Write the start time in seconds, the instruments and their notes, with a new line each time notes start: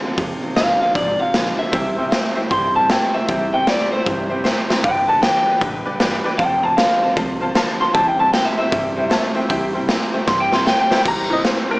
Already playing: clean electric guitar A4
0.03 clean electric guitar F2 D3, steel-string acoustic guitar C4 F4 A4, muted upright bass stroke
0.17 clean electric guitar F2 C3, upright bass F2, steel-string acoustic guitar F3 G#3 D#4 F4 C5, kick, open hi-hat
0.42 clean electric guitar F2 C3, steel-string acoustic guitar D#4 F4 C5, muted upright bass stroke
0.55 upright bass G1, clean electric guitar F2 D3 F5, steel-string acoustic guitar G#3 D#4 F4 C5, snare, open hi-hat
0.80 clean electric guitar F2 D3 F5, steel-string acoustic guitar D#4 F4 C5, muted upright bass stroke
0.94 upright bass G#1, clean electric guitar F2 C3 D5, steel-string acoustic guitar F3 G#3 D#4 F4 C5, kick, open hi-hat
1.19 clean electric guitar F2 C3 F5, steel-string acoustic guitar D#4 F4 C5, muted upright bass stroke
1.33 upright bass A#1, clean electric guitar F2 D3, steel-string acoustic guitar G#3 D#4 F4 C5, snare, open hi-hat
1.58 clean electric guitar F2 D3 E5, steel-string acoustic guitar D#4 F4 C5, muted upright bass stroke
1.72 upright bass C2, steel-string acoustic guitar C3 E3 G3 C4 E4 C5, clean electric guitar C3 G3, honky-tonk piano C5 E5 G5, kick, open hi-hat
1.96 clean electric guitar C3 G3, steel-string acoustic guitar G3 C4 E4 C5, honky-tonk piano C5 E5 G5
2.11 steel-string acoustic guitar G3 C4 E4 C5, clean electric guitar A3, honky-tonk piano C5 E5 G5, snare, open hi-hat
2.35 clean electric guitar C3 A3, steel-string acoustic guitar G3 C4 E4 C5, honky-tonk piano C5 E5 G5, muted upright bass stroke
2.50 upright bass G2, steel-string acoustic guitar C3 E3 G3 C4 E4 C5, clean electric guitar C3 G3 C6, honky-tonk piano C5 E5 G5, kick, open hi-hat
2.74 clean electric guitar C3 G3 A5, steel-string acoustic guitar G3 C4 E4 C5, honky-tonk piano C5 E5 G5
2.88 clean electric guitar C3 A3 G5, steel-string acoustic guitar G3 C4 E4 C5, honky-tonk piano C5 E5 A5, snare, open hi-hat
3.13 clean electric guitar C3 A3 E5, steel-string acoustic guitar G3 C4 E4 C5, honky-tonk piano C5 E5 G5, muted upright bass stroke
3.28 upright bass C2, steel-string acoustic guitar C3 E3 G3 C4 E4 C5, clean electric guitar C3 G3, honky-tonk piano C5 E5 G5, kick, open hi-hat
3.53 clean electric guitar C3 G3 G5, steel-string acoustic guitar G3 C4 E4 C5, honky-tonk piano C5 E5 G5
3.67 clean electric guitar C3 A3 D5, steel-string acoustic guitar G3 C4 E4 C5, honky-tonk piano C5 E5 G5, snare, open hi-hat
3.91 clean electric guitar C3 A3 C5, steel-string acoustic guitar G3 C4 E4 C5, honky-tonk piano C5 E5 G5, muted upright bass stroke
4.05 upright bass G2, steel-string acoustic guitar C3 E3 G3 C4 E4 C5, clean electric guitar C3 G3, honky-tonk piano C5 E5 G5, kick, open hi-hat
4.30 clean electric guitar C3 G3, steel-string acoustic guitar G3 C4 E4 C5, honky-tonk piano C5 E5 G5
4.44 clean electric guitar C3 A3, steel-string acoustic guitar G3 C4 E4 C5, honky-tonk piano C5 E5 G5, snare
4.69 clean electric guitar C3 A3, steel-string acoustic guitar G3 C4 E4 C5, honky-tonk piano C5 E5 G5, muted upright bass stroke, snare
4.83 upright bass G1, clean electric guitar G2 D3 G5, steel-string acoustic guitar G3 D4 G4 B4, honky-tonk piano B4 D5 G5, kick, open hi-hat
5.08 clean electric guitar G2 D3 A5, steel-string acoustic guitar D4 G4 B4, honky-tonk piano B4 D5 G5
5.22 clean electric guitar G2 E3 G5, steel-string acoustic guitar G3 D4 G4 B4, honky-tonk piano B4 D5 G5, snare, open hi-hat
5.46 clean electric guitar G2 E3, steel-string acoustic guitar D4 G4 B4, honky-tonk piano B4 D5 G5, muted upright bass stroke
5.61 upright bass A1, clean electric guitar G2 D3, steel-string acoustic guitar G3 D4 G4 B4, honky-tonk piano B4 D5 G5, kick, open hi-hat
5.85 clean electric guitar G2 D3, steel-string acoustic guitar D4 G4 B4, honky-tonk piano B4 D5 G5, muted upright bass stroke
5.99 upright bass G1, clean electric guitar G2 E3, steel-string acoustic guitar G3 D4 G4 B4, honky-tonk piano B4 D5 G5, snare, open hi-hat
6.24 clean electric guitar G2 E3, steel-string acoustic guitar D4 G4 B4, honky-tonk piano B4 D5 G5, muted upright bass stroke
6.38 upright bass F1, clean electric guitar F2 C3 G5, steel-string acoustic guitar F3 A3 C4 F4 C5, honky-tonk piano C5 F5 A5, kick, open hi-hat
6.63 clean electric guitar F2 C3 A5, steel-string acoustic guitar C4 F4 C5, honky-tonk piano C5 F5 A5
6.77 clean electric guitar F2 D3 F5, steel-string acoustic guitar A3 C4 F4 C5, honky-tonk piano C5 F5 A5, snare, open hi-hat
7.01 clean electric guitar F2 D3, steel-string acoustic guitar C4 F4 C5, honky-tonk piano C5 F5 A5, muted upright bass stroke
7.16 upright bass C2, clean electric guitar F2 C3, steel-string acoustic guitar F3 A3 C4 F4 C5, honky-tonk piano C5 F5 A5, kick, open hi-hat
7.40 clean electric guitar F2 C3, steel-string acoustic guitar C4 F4 C5, honky-tonk piano C5 F5 A5
7.54 clean electric guitar F2 D3, steel-string acoustic guitar A3 C4 F4 C5, honky-tonk piano C5 F5 A5, snare, open hi-hat
7.79 clean electric guitar F2 D3 C6, steel-string acoustic guitar C4 F4 C5, honky-tonk piano C5 F5 A5, muted upright bass stroke
7.94 upright bass C2, steel-string acoustic guitar C3 E3 G3 C4 E4 C5, clean electric guitar C3 G3 A5, honky-tonk piano C5 E5 G5, kick, open hi-hat
8.07 clean electric guitar G5
8.19 clean electric guitar C3 G3 A5, steel-string acoustic guitar G3 C4 E4 C5, honky-tonk piano C5 E5 G5
8.33 clean electric guitar C3 A3 G5, steel-string acoustic guitar G3 C4 E4 C5, honky-tonk piano C5 E5 G5, snare, open hi-hat
8.45 clean electric guitar E5
8.57 clean electric guitar C3 A3 E5, steel-string acoustic guitar G3 C4 E4 C5, honky-tonk piano C5 E5 G5, muted upright bass stroke
8.71 upright bass G2, steel-string acoustic guitar C3 E3 G3 C4 E4 C5, clean electric guitar C3 G3, honky-tonk piano C5 E5 G5, kick, open hi-hat
8.96 clean electric guitar C3 G3, steel-string acoustic guitar G3 C4 E4 C5, honky-tonk piano C5 E5 G5
9.10 clean electric guitar C3 A3, steel-string acoustic guitar G3 C4 E4 C5, honky-tonk piano C5 E5 A5, snare, open hi-hat
9.34 clean electric guitar C3 A3, steel-string acoustic guitar G3 C4 E4 C5, honky-tonk piano C5 E5 G5, muted upright bass stroke
9.48 upright bass C2, steel-string acoustic guitar C3 E3 G3 C4 E4 C5, clean electric guitar C3 G3, honky-tonk piano C5 E5 G5, kick, open hi-hat
9.73 clean electric guitar C3 G3, steel-string acoustic guitar G3 C4 E4 C5, honky-tonk piano C5 E5 G5
9.87 clean electric guitar C3 A3, steel-string acoustic guitar G3 C4 E4 C5, honky-tonk piano C5 E5 G5, snare, open hi-hat
10.12 clean electric guitar C3 A3, steel-string acoustic guitar G3 C4 E4 C5, honky-tonk piano C5 E5 G5, muted upright bass stroke
10.27 upright bass G2, clean electric guitar C3 G3 C6, steel-string acoustic guitar C3 E3 G3 C4 E4 C5, honky-tonk piano C5 E5 G5, kick, snare
10.40 clean electric guitar G5
10.51 clean electric guitar C3 G3 C6, steel-string acoustic guitar G3 C4 E4 C5, honky-tonk piano C5 E5 G5, snare
10.65 clean electric guitar C3 A3 G5, steel-string acoustic guitar G3 C4 E4 C5, honky-tonk piano C5 E5 G5, snare
10.80 clean electric guitar G5
10.90 clean electric guitar C3 A3, steel-string acoustic guitar G3 C4 E4 C5, honky-tonk piano C5 E5 G5, muted upright bass stroke, snare
11.04 upright bass C2, steel-string acoustic guitar C3 E3 G3 C4 E4 C5, clean electric guitar C3 G3, kick, crash
11.08 honky-tonk piano A#5
11.29 clean electric guitar C3 G3, honky-tonk piano E3 G3 C4, steel-string acoustic guitar G3 C4 E4 C5
11.33 honky-tonk piano D#5
11.44 clean electric guitar C3 A3, steel-string acoustic guitar C4 E4 C5, honky-tonk piano C5, snare, open hi-hat
11.68 clean electric guitar C3 A3, steel-string acoustic guitar G3 C4 E4 C5, honky-tonk piano A#4, muted upright bass stroke